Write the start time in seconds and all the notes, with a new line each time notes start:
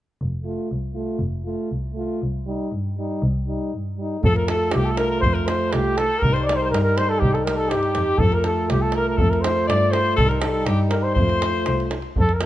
0.21 F1
0.44 A3 F4
0.71 C2
0.95 A3 F4
1.19 F1
1.45 A3 F4
1.71 C2
1.94 A3 F4
2.22 C2
2.47 G3 D#4
2.71 G2
2.98 G3 D#4
3.22 C2
3.48 G3 D#4
3.73 G2
3.98 G3 D#4
4.21 F2 A3 F4 A4, davul low
4.36 A#4, davul high
4.48 A4, davul high
4.71 C2 G4, davul high
4.77 G4
4.85 A4
4.91 A4
4.97 A#4, davul high
5.07 A#4
5.20 C5, davul low
5.24 F2
5.33 A#4, davul high
5.46 C5, davul high
5.72 C2 G4, davul high
5.97 A4, davul high
6.19 A#4, davul low
6.23 C2 G3 D#4
6.33 C5, davul high
6.43 D5
6.49 davul high
6.55 C5
6.62 A#4 C5
6.70 G2 A#4
6.74 davul high
6.83 A#4
6.97 C5, davul high
7.09 A4
7.19 C2 G4, davul low
7.33 A4, davul high
7.43 A#4, davul high
7.56 A4
7.60 A4
7.69 G2 G4, davul high
7.73 G4
7.83 davul high
7.95 F2, davul high
8.18 F2 A3 A4, davul low
8.22 F4
8.32 A#4, davul high
8.44 A4, davul high
8.68 C2 G4, davul high
8.81 A4
8.92 A#4, davul high
9.08 A#4
9.17 F2 A4, davul low
9.30 A#4, davul high
9.41 C5, davul high
9.67 G2 D5, davul high
9.90 C5, davul high
10.16 C2 G3 A4, davul low
10.20 D#4
10.28 A#4, davul high
10.40 A4, davul high
10.65 G2 G4, davul high
10.89 A#4, davul high
11.03 C5
11.14 F2 C5, davul low
11.18 A3 F4
11.29 davul high
11.42 davul high
11.66 C2, davul high
11.80 davul high
11.91 davul high
12.02 davul high
12.16 F2, davul low
12.20 A4
12.29 davul high
12.33 A#4
12.41 A3 F4, davul high